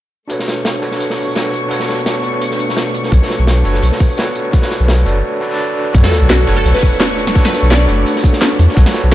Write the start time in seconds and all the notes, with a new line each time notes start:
0.28 B2 A3 D4 F#4 A4 B4 C#6, closed hi-hat
0.32 C#5
0.39 snare
0.47 snare, closed hi-hat
0.65 snare, closed hi-hat
0.82 D4 F#4 A4 B4 C#5, closed hi-hat
0.91 snare
1.00 closed hi-hat
1.10 snare
1.18 closed hi-hat, open hi-hat
1.34 D4 F#4 A4 B4 C#5, snare, closed hi-hat
1.53 closed hi-hat
1.69 D4 F#4 A4 B4, closed hi-hat
1.73 C#5
1.80 snare
1.88 snare, closed hi-hat
1.98 closed hi-hat
2.06 snare, closed hi-hat
2.22 D4 F#4 A4 B4, closed hi-hat
2.26 D5
2.42 closed hi-hat
2.51 snare
2.59 closed hi-hat
2.69 snare
2.77 snare, closed hi-hat
2.94 closed hi-hat
3.04 snare
3.10 B1 D4 F#4 A4 B4, kick, closed hi-hat
3.14 C#5
3.23 snare
3.30 snare, closed hi-hat
3.39 B1
3.47 snare, closed hi-hat
3.64 F#1 D4 F#4 A4 B4 C#5, closed hi-hat
3.74 snare
3.83 B1, closed hi-hat
3.92 snare
3.99 kick, closed hi-hat, open hi-hat
4.17 D4 F#4 A4 B4 C#5, snare, closed hi-hat
4.35 closed hi-hat
4.51 D4 F#4 A4 B4, kick, closed hi-hat
4.56 C#5
4.62 snare
4.71 snare, closed hi-hat
4.80 B1, closed hi-hat
4.88 snare, closed hi-hat
5.05 F#1 D4 F#4 A4 B4 D5, closed hi-hat
5.40 D4 F#4 A4 B4 D5
5.49 D4 F#4 A4 B4
5.53 D5
5.92 B1 A3 D4 F#4 A4 B4 C#6, kick, closed hi-hat, sub drop
5.97 C#5
6.03 A4, snare
6.12 snare, closed hi-hat
6.22 B1
6.29 F#4, snare, closed hi-hat
6.46 F#1 D4 F#4 A4 B4 C#5, closed hi-hat
6.56 A4
6.65 B1, closed hi-hat
6.74 B4, snare
6.82 kick, closed hi-hat, open hi-hat
6.99 D4 F#4 A4 B4 C#5, snare, closed hi-hat
7.18 closed hi-hat
7.27 snare
7.33 D4 F#4 A4 B4, kick, closed hi-hat
7.38 C#5
7.45 B4, snare
7.53 snare, closed hi-hat
7.63 B1, closed hi-hat
7.71 D5, snare, closed hi-hat
7.86 F#1 D4 F#4 A4 B4, closed hi-hat, open hi-hat
7.91 D5
8.06 closed hi-hat
8.16 snare
8.24 kick, closed hi-hat
8.33 snare
8.41 snare, closed hi-hat
8.59 E2, snare, closed hi-hat
8.68 snare
8.75 B1 D4 F#4 A4 B4, kick, closed hi-hat
8.79 C#5
8.86 snare
8.94 snare, closed hi-hat
9.04 B1